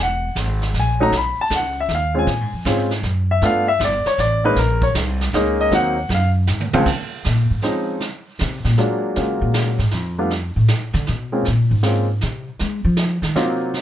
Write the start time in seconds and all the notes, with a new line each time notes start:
Already playing: E1
0.03 F#5
0.35 G#1, kick, snare, hi-hat pedal
0.62 snare
0.74 A#1, kick, snare
0.80 G#5
1.00 F#3 A3 C#4 D#4 A#5
1.12 B1, brush sweep, kick, snare
1.18 B5
1.38 A5, muted upright bass stroke
1.50 C#2, kick, snare, hi-hat pedal
1.56 F#5
1.80 E5
1.89 D#2, kick, snare
1.95 F5
2.14 G#3 C4 C#4 F4
2.19 G#5
2.27 A#2, brush sweep, kick, snare
2.41 G#2
2.53 F2
2.65 G#2 G#3 C4 C#4 F4, kick, snare, hi-hat pedal
2.91 snare
3.03 F#2, kick, snare
3.31 E5
3.42 G2 A3 B3 D4 F4 F5, brush sweep, kick, snare
3.68 E5
3.80 G1, kick, snare, hi-hat pedal
3.85 D5
4.05 C#5, muted upright bass stroke, snare
4.18 A1 D5, kick, snare
4.45 G#3 A#3 C#4 D#4 B4
4.56 A#1 A#4, brush sweep, kick, snare
4.82 C#5, kick
4.95 C2, kick, snare, hi-hat pedal
5.21 snare
5.33 C#2 G#3 A#3 C#4 D#4, kick, snare
5.61 D#5
5.71 D#2 F#3 A#3 C4 D#4 F#5, brush sweep, kick, snare
6.09 F#2, kick, snare
6.14 F5
6.47 G#2, snare, hi-hat pedal
6.61 high tom
6.73 C#2 F3 G#3 C4 F4, muted upright bass stroke, high tom
6.86 brush sweep, kick, snare, crash
7.24 A#2, snare
7.51 G#2
7.62 F3 G#3 C4 C#4 D#4, snare
8.00 brush sweep, snare
8.39 C3, snare
8.65 A#2, snare
8.78 F#3 G#3 A#3 D4 F4, snare
9.16 C#3 F#3 G#3 A#3 C#4 F4, brush sweep, snare
9.41 A#2
9.54 snare
9.79 G#2, snare
9.91 F2, snare
10.18 G3 A3 B3 D4 F4
10.31 brush sweep, snare
10.56 A2
10.68 snare
10.93 D3, snare
11.07 B2, snare
11.32 G#3 A#3 C4 C#4 F4
11.45 A#2, brush sweep, snare
11.71 G#2
11.83 G#3 A#3 C4 C#4 F4, snare
12.21 C3, snare
12.59 G#3, brush sweep, snare
12.85 F3
12.97 snare
13.22 D#3, snare
13.36 C3 F#3 A#3 C4 D#4 F4, snare
13.74 brush sweep, snare